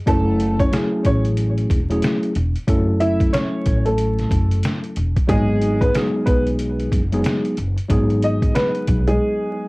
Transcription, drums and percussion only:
0.07 kick, closed hi-hat
0.40 closed hi-hat
0.59 kick, closed hi-hat
0.73 cross-stick, snare, closed hi-hat
1.05 kick, closed hi-hat
1.25 closed hi-hat
1.37 closed hi-hat
1.58 closed hi-hat
1.70 kick, closed hi-hat
1.90 closed hi-hat
2.02 cross-stick, snare, closed hi-hat
2.23 closed hi-hat
2.35 closed hi-hat
2.56 closed hi-hat
2.68 kick, closed hi-hat
3.01 closed hi-hat
3.20 kick, closed hi-hat
3.34 cross-stick, snare, closed hi-hat
3.66 kick, closed hi-hat
3.86 closed hi-hat
3.98 closed hi-hat
4.19 snare, closed hi-hat
4.31 kick, closed hi-hat
4.51 closed hi-hat
4.63 cross-stick, snare, closed hi-hat
4.84 closed hi-hat
4.96 closed hi-hat
5.16 kick, closed hi-hat
5.29 kick, closed hi-hat
5.61 closed hi-hat
5.81 kick, closed hi-hat
5.95 cross-stick, snare, closed hi-hat
6.27 kick, closed hi-hat
6.47 closed hi-hat
6.59 closed hi-hat
6.80 closed hi-hat
6.92 kick, closed hi-hat
7.12 closed hi-hat
7.24 cross-stick, snare, closed hi-hat
7.45 closed hi-hat
7.57 closed hi-hat
7.78 closed hi-hat
7.90 kick, closed hi-hat
8.10 closed hi-hat
8.22 closed hi-hat
8.42 kick, closed hi-hat
8.55 cross-stick, snare, closed hi-hat
8.75 closed hi-hat
8.88 kick, closed hi-hat
9.08 closed hi-hat

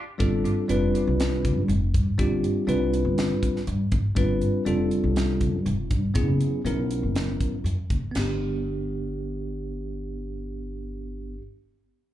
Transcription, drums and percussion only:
0.20 kick, closed hi-hat
0.45 closed hi-hat
0.69 closed hi-hat
0.95 closed hi-hat
1.20 snare, closed hi-hat
1.45 kick, closed hi-hat
1.69 closed hi-hat
1.94 kick, closed hi-hat
2.19 kick, closed hi-hat
2.44 closed hi-hat
2.69 closed hi-hat
2.94 closed hi-hat
3.18 snare, closed hi-hat
3.43 kick, closed hi-hat
3.56 snare
3.67 closed hi-hat
3.92 kick, closed hi-hat
4.16 kick, closed hi-hat
4.41 closed hi-hat
4.66 closed hi-hat
4.91 closed hi-hat
5.16 snare, closed hi-hat
5.41 kick, closed hi-hat
5.66 closed hi-hat
5.91 kick, closed hi-hat
6.15 kick, closed hi-hat
6.41 closed hi-hat
6.66 closed hi-hat
6.91 closed hi-hat
7.16 snare, closed hi-hat
7.40 kick, closed hi-hat
7.66 closed hi-hat
7.90 kick, closed hi-hat
8.15 snare, splash

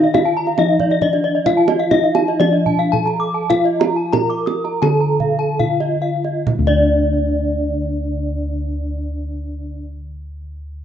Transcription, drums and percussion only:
0.04 kendang slap
0.14 kendang high, kendang low
0.47 kendang slap
0.58 kendang high
0.80 kendang low
0.91 kendang slap
1.02 kendang low
1.13 kendang slap
1.46 kendang low
1.68 kendang high
1.80 kendang slap
1.91 kendang high, kendang low
2.15 kendang high
2.28 kendang slap
2.41 kendang high
2.66 kendang low
2.80 kendang slap
2.93 kendang low
3.07 kendang slap
3.50 kendang low
3.66 kendang slap
3.81 kendang high
4.13 kendang high, kendang low
4.30 kendang slap
4.47 kendang high
4.65 kendang slap
4.82 kendang high
5.20 kendang low
5.60 kendang low
5.80 kendang slap
6.24 kendang slap
6.47 kendang low

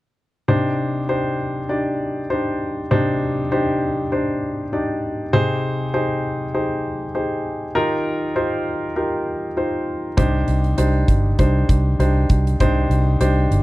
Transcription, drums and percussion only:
10.18 kick, closed hi-hat
10.48 closed hi-hat
10.64 closed hi-hat
10.78 closed hi-hat
11.08 kick, closed hi-hat
11.39 kick, closed hi-hat
11.69 kick, closed hi-hat
12.00 closed hi-hat
12.29 kick, closed hi-hat
12.47 closed hi-hat
12.60 kick, closed hi-hat
12.91 closed hi-hat
13.21 closed hi-hat
13.52 closed hi-hat

